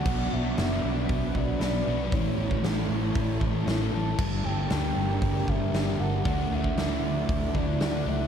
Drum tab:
CC |x---------------|----------------|x---------------|----------------|
HH |----o---o---o---|o---o---o---o---|----o---o---o---|o---o---o---o---|
SD |----o-------o---|----o-------o---|----o-------o---|----o-------o---|
BD |o-------o-o-----|o--o----o-o-----|o-------o-o-----|o--o----o-o-----|